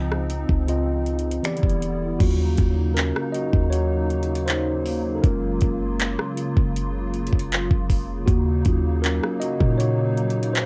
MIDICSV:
0, 0, Header, 1, 5, 480
1, 0, Start_track
1, 0, Tempo, 759494
1, 1390, Time_signature, 4, 2, 24, 8
1, 6735, End_track
2, 0, Start_track
2, 0, Title_t, "Tine electric piano"
2, 0, Program_c, 0, 4
2, 0, Control_c, 0, 64, 127
2, 0, Note_on_c, 0, 49, 81
2, 0, Note_on_c, 0, 60, 82
2, 0, Note_on_c, 0, 65, 81
2, 0, Note_on_c, 0, 75, 98
2, 353, Note_off_c, 0, 49, 0
2, 357, Note_off_c, 0, 60, 0
2, 359, Note_off_c, 0, 65, 0
2, 362, Note_off_c, 0, 75, 0
2, 423, Note_on_c, 0, 49, 86
2, 427, Note_on_c, 0, 60, 76
2, 434, Note_on_c, 0, 65, 84
2, 439, Note_on_c, 0, 75, 92
2, 902, Note_on_c, 0, 52, 93
2, 906, Note_off_c, 0, 49, 0
2, 909, Note_off_c, 0, 60, 0
2, 909, Note_on_c, 0, 59, 83
2, 912, Note_off_c, 0, 65, 0
2, 913, Note_on_c, 0, 67, 82
2, 915, Note_off_c, 0, 75, 0
2, 918, Control_c, 0, 64, 0
2, 919, Note_on_c, 0, 74, 106
2, 1010, Control_c, 0, 64, 127
2, 1350, Note_off_c, 0, 52, 0
2, 1353, Note_off_c, 0, 59, 0
2, 1355, Note_off_c, 0, 67, 0
2, 1358, Note_off_c, 0, 74, 0
2, 1383, Note_on_c, 0, 66, 97
2, 1389, Note_on_c, 0, 54, 56
2, 1392, Note_on_c, 0, 61, 50
2, 1397, Note_on_c, 0, 65, 60
2, 1398, Note_on_c, 0, 58, 74
2, 1399, Control_c, 0, 64, 0
2, 1519, Control_c, 0, 64, 127
2, 1709, Note_off_c, 0, 54, 0
2, 1710, Note_off_c, 0, 61, 0
2, 1713, Note_off_c, 0, 65, 0
2, 1841, Note_off_c, 0, 66, 0
2, 1848, Note_off_c, 0, 58, 0
2, 1860, Note_on_c, 0, 70, 94
2, 1875, Note_on_c, 0, 61, 77
2, 1970, Note_off_c, 0, 70, 0
2, 1982, Note_off_c, 0, 61, 0
2, 2100, Note_on_c, 0, 75, 102
2, 2116, Note_on_c, 0, 66, 77
2, 2336, Note_off_c, 0, 66, 0
2, 2339, Note_on_c, 0, 73, 105
2, 2352, Note_off_c, 0, 75, 0
2, 2355, Note_on_c, 0, 66, 82
2, 2807, Note_off_c, 0, 66, 0
2, 2819, Note_on_c, 0, 72, 105
2, 2836, Note_on_c, 0, 63, 77
2, 2839, Note_off_c, 0, 73, 0
2, 3244, Note_off_c, 0, 63, 0
2, 3257, Note_on_c, 0, 69, 66
2, 3273, Note_off_c, 0, 72, 0
2, 3299, Note_on_c, 0, 70, 90
2, 3305, Note_off_c, 0, 69, 0
2, 3308, Note_on_c, 0, 56, 58
2, 3311, Note_on_c, 0, 58, 54
2, 3315, Note_on_c, 0, 61, 70
2, 3316, Note_on_c, 0, 65, 63
2, 3318, Control_c, 0, 64, 0
2, 3411, Control_c, 0, 64, 127
2, 3628, Note_off_c, 0, 56, 0
2, 3630, Note_off_c, 0, 58, 0
2, 3632, Note_off_c, 0, 65, 0
2, 4719, Note_off_c, 0, 70, 0
2, 4727, Note_off_c, 0, 61, 0
2, 5221, Note_on_c, 0, 66, 94
2, 5236, Note_on_c, 0, 58, 72
2, 5239, Control_c, 0, 64, 0
2, 5344, Control_c, 0, 64, 127
2, 5470, Note_on_c, 0, 54, 58
2, 5474, Note_on_c, 0, 61, 57
2, 5477, Note_on_c, 0, 65, 64
2, 5687, Note_off_c, 0, 58, 0
2, 5700, Note_on_c, 0, 70, 96
2, 5709, Note_off_c, 0, 61, 0
2, 5716, Note_on_c, 0, 61, 79
2, 5720, Note_off_c, 0, 66, 0
2, 5936, Note_off_c, 0, 61, 0
2, 5940, Note_on_c, 0, 75, 105
2, 5952, Note_off_c, 0, 70, 0
2, 5956, Note_on_c, 0, 66, 82
2, 6176, Note_off_c, 0, 66, 0
2, 6179, Note_on_c, 0, 73, 107
2, 6192, Note_off_c, 0, 75, 0
2, 6197, Note_on_c, 0, 66, 78
2, 6648, Note_off_c, 0, 66, 0
2, 6657, Note_on_c, 0, 72, 101
2, 6675, Note_on_c, 0, 63, 77
2, 6679, Note_off_c, 0, 73, 0
2, 6735, Note_off_c, 0, 54, 0
2, 6735, Note_off_c, 0, 63, 0
2, 6735, Note_off_c, 0, 65, 0
2, 6735, Note_off_c, 0, 72, 0
2, 6735, End_track
3, 0, Start_track
3, 0, Title_t, "Analog synth pad"
3, 0, Program_c, 1, 89
3, 0, Note_on_c, 1, 49, 84
3, 0, Note_on_c, 1, 53, 74
3, 0, Note_on_c, 1, 60, 79
3, 0, Note_on_c, 1, 63, 92
3, 884, Note_off_c, 1, 63, 0
3, 885, Note_off_c, 1, 49, 0
3, 895, Note_off_c, 1, 53, 0
3, 895, Note_off_c, 1, 60, 0
3, 910, Note_on_c, 1, 64, 82
3, 911, Note_on_c, 1, 50, 76
3, 911, Note_on_c, 1, 55, 69
3, 911, Note_on_c, 1, 59, 73
3, 1385, Note_off_c, 1, 64, 0
3, 1386, Note_off_c, 1, 50, 0
3, 1386, Note_off_c, 1, 55, 0
3, 1386, Note_off_c, 1, 59, 0
3, 1390, Note_on_c, 1, 49, 86
3, 1390, Note_on_c, 1, 54, 80
3, 1390, Note_on_c, 1, 63, 97
3, 1391, Note_on_c, 1, 58, 78
3, 3291, Note_off_c, 1, 63, 0
3, 3312, Note_on_c, 1, 65, 94
3, 5205, Note_off_c, 1, 54, 0
3, 5205, Note_off_c, 1, 58, 0
3, 5212, Note_off_c, 1, 65, 0
3, 5230, Note_on_c, 1, 63, 95
3, 5231, Note_on_c, 1, 54, 82
3, 5231, Note_on_c, 1, 58, 81
3, 6735, Note_off_c, 1, 49, 0
3, 6735, Note_off_c, 1, 54, 0
3, 6735, Note_off_c, 1, 58, 0
3, 6735, Note_off_c, 1, 63, 0
3, 6735, End_track
4, 0, Start_track
4, 0, Title_t, "808-style bass"
4, 0, Program_c, 2, 38
4, 0, Note_on_c, 2, 37, 98
4, 287, Note_off_c, 2, 37, 0
4, 311, Note_on_c, 2, 37, 102
4, 887, Note_off_c, 2, 37, 0
4, 1031, Note_on_c, 2, 28, 99
4, 1376, Note_off_c, 2, 28, 0
4, 1392, Note_on_c, 2, 39, 117
4, 1621, Note_off_c, 2, 39, 0
4, 1633, Note_on_c, 2, 39, 103
4, 1977, Note_off_c, 2, 39, 0
4, 2233, Note_on_c, 2, 39, 101
4, 3286, Note_off_c, 2, 39, 0
4, 3311, Note_on_c, 2, 30, 115
4, 3541, Note_off_c, 2, 30, 0
4, 3552, Note_on_c, 2, 30, 103
4, 3897, Note_off_c, 2, 30, 0
4, 4150, Note_on_c, 2, 30, 110
4, 4611, Note_off_c, 2, 30, 0
4, 4632, Note_on_c, 2, 30, 98
4, 4861, Note_off_c, 2, 30, 0
4, 4872, Note_on_c, 2, 29, 101
4, 5217, Note_off_c, 2, 29, 0
4, 5231, Note_on_c, 2, 39, 116
4, 5461, Note_off_c, 2, 39, 0
4, 5473, Note_on_c, 2, 39, 104
4, 5817, Note_off_c, 2, 39, 0
4, 6071, Note_on_c, 2, 46, 111
4, 6735, Note_off_c, 2, 46, 0
4, 6735, End_track
5, 0, Start_track
5, 0, Title_t, "Drums"
5, 74, Note_on_c, 9, 37, 97
5, 137, Note_off_c, 9, 37, 0
5, 188, Note_on_c, 9, 42, 78
5, 252, Note_off_c, 9, 42, 0
5, 310, Note_on_c, 9, 36, 89
5, 373, Note_off_c, 9, 36, 0
5, 432, Note_on_c, 9, 42, 76
5, 495, Note_off_c, 9, 42, 0
5, 671, Note_on_c, 9, 42, 42
5, 734, Note_off_c, 9, 42, 0
5, 750, Note_on_c, 9, 42, 55
5, 814, Note_off_c, 9, 42, 0
5, 830, Note_on_c, 9, 42, 65
5, 893, Note_off_c, 9, 42, 0
5, 910, Note_on_c, 9, 42, 69
5, 916, Note_on_c, 9, 26, 114
5, 973, Note_off_c, 9, 42, 0
5, 980, Note_off_c, 9, 26, 0
5, 990, Note_on_c, 9, 42, 53
5, 1030, Note_on_c, 9, 36, 96
5, 1053, Note_off_c, 9, 42, 0
5, 1071, Note_on_c, 9, 42, 41
5, 1093, Note_off_c, 9, 36, 0
5, 1134, Note_off_c, 9, 42, 0
5, 1151, Note_on_c, 9, 42, 68
5, 1214, Note_off_c, 9, 42, 0
5, 1391, Note_on_c, 9, 36, 124
5, 1391, Note_on_c, 9, 42, 64
5, 1391, Note_on_c, 9, 49, 97
5, 1454, Note_off_c, 9, 36, 0
5, 1454, Note_off_c, 9, 49, 0
5, 1455, Note_off_c, 9, 42, 0
5, 1627, Note_on_c, 9, 42, 61
5, 1632, Note_on_c, 9, 36, 94
5, 1690, Note_off_c, 9, 42, 0
5, 1695, Note_off_c, 9, 36, 0
5, 1874, Note_on_c, 9, 42, 80
5, 1881, Note_on_c, 9, 39, 121
5, 1937, Note_off_c, 9, 42, 0
5, 1944, Note_off_c, 9, 39, 0
5, 1997, Note_on_c, 9, 37, 100
5, 2061, Note_off_c, 9, 37, 0
5, 2113, Note_on_c, 9, 42, 76
5, 2176, Note_off_c, 9, 42, 0
5, 2232, Note_on_c, 9, 36, 95
5, 2296, Note_off_c, 9, 36, 0
5, 2354, Note_on_c, 9, 42, 77
5, 2417, Note_off_c, 9, 42, 0
5, 2592, Note_on_c, 9, 42, 40
5, 2656, Note_off_c, 9, 42, 0
5, 2672, Note_on_c, 9, 42, 55
5, 2735, Note_off_c, 9, 42, 0
5, 2750, Note_on_c, 9, 42, 65
5, 2814, Note_off_c, 9, 42, 0
5, 2828, Note_on_c, 9, 42, 69
5, 2836, Note_on_c, 9, 39, 117
5, 2891, Note_off_c, 9, 42, 0
5, 2899, Note_off_c, 9, 39, 0
5, 3069, Note_on_c, 9, 46, 73
5, 3132, Note_off_c, 9, 46, 0
5, 3310, Note_on_c, 9, 36, 119
5, 3310, Note_on_c, 9, 42, 62
5, 3373, Note_off_c, 9, 36, 0
5, 3373, Note_off_c, 9, 42, 0
5, 3544, Note_on_c, 9, 42, 61
5, 3551, Note_on_c, 9, 36, 93
5, 3607, Note_off_c, 9, 42, 0
5, 3614, Note_off_c, 9, 36, 0
5, 3789, Note_on_c, 9, 42, 81
5, 3796, Note_on_c, 9, 39, 112
5, 3853, Note_off_c, 9, 42, 0
5, 3860, Note_off_c, 9, 39, 0
5, 3912, Note_on_c, 9, 37, 101
5, 3976, Note_off_c, 9, 37, 0
5, 4027, Note_on_c, 9, 42, 79
5, 4091, Note_off_c, 9, 42, 0
5, 4150, Note_on_c, 9, 36, 98
5, 4214, Note_off_c, 9, 36, 0
5, 4274, Note_on_c, 9, 42, 78
5, 4337, Note_off_c, 9, 42, 0
5, 4511, Note_on_c, 9, 42, 42
5, 4574, Note_off_c, 9, 42, 0
5, 4593, Note_on_c, 9, 42, 55
5, 4630, Note_on_c, 9, 36, 79
5, 4656, Note_off_c, 9, 42, 0
5, 4673, Note_on_c, 9, 42, 68
5, 4694, Note_off_c, 9, 36, 0
5, 4736, Note_off_c, 9, 42, 0
5, 4753, Note_on_c, 9, 42, 69
5, 4760, Note_on_c, 9, 39, 113
5, 4816, Note_off_c, 9, 42, 0
5, 4824, Note_off_c, 9, 39, 0
5, 4872, Note_on_c, 9, 36, 97
5, 4935, Note_off_c, 9, 36, 0
5, 4991, Note_on_c, 9, 36, 97
5, 4993, Note_on_c, 9, 46, 70
5, 5054, Note_off_c, 9, 36, 0
5, 5056, Note_off_c, 9, 46, 0
5, 5231, Note_on_c, 9, 36, 123
5, 5233, Note_on_c, 9, 42, 63
5, 5294, Note_off_c, 9, 36, 0
5, 5296, Note_off_c, 9, 42, 0
5, 5466, Note_on_c, 9, 42, 59
5, 5472, Note_on_c, 9, 36, 86
5, 5529, Note_off_c, 9, 42, 0
5, 5535, Note_off_c, 9, 36, 0
5, 5711, Note_on_c, 9, 42, 82
5, 5718, Note_on_c, 9, 39, 118
5, 5775, Note_off_c, 9, 42, 0
5, 5782, Note_off_c, 9, 39, 0
5, 5837, Note_on_c, 9, 37, 100
5, 5900, Note_off_c, 9, 37, 0
5, 5951, Note_on_c, 9, 42, 79
5, 6014, Note_off_c, 9, 42, 0
5, 6071, Note_on_c, 9, 36, 91
5, 6134, Note_off_c, 9, 36, 0
5, 6193, Note_on_c, 9, 42, 78
5, 6256, Note_off_c, 9, 42, 0
5, 6430, Note_on_c, 9, 42, 44
5, 6493, Note_off_c, 9, 42, 0
5, 6510, Note_on_c, 9, 42, 57
5, 6574, Note_off_c, 9, 42, 0
5, 6591, Note_on_c, 9, 42, 66
5, 6654, Note_off_c, 9, 42, 0
5, 6668, Note_on_c, 9, 42, 71
5, 6676, Note_on_c, 9, 39, 115
5, 6731, Note_off_c, 9, 42, 0
5, 6735, Note_off_c, 9, 39, 0
5, 6735, End_track
0, 0, End_of_file